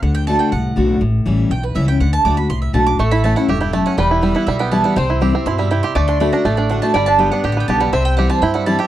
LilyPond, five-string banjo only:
\new Staff \with { instrumentName = "Five-string banjo" } { \time 4/4 \key d \mixolydian \tempo 4 = 243 r1 | r1 | r1 | a8 e'8 a8 e'8 g'8 e'8 a8 cis'8 |
g8 e'8 g8 e'8 g8 b8 e'8 g8 | c'8 e'8 g'8 c'8 e'8 g8 e'8 g'8 | a8 d'8 a8 d'8 a8 d'8 d'8 a8 | g8 d'8 b8 d'8 g'8 b8 g'8 g8 |
c'4 g'8 c'8 e'8 g8 e'8 g'8 | }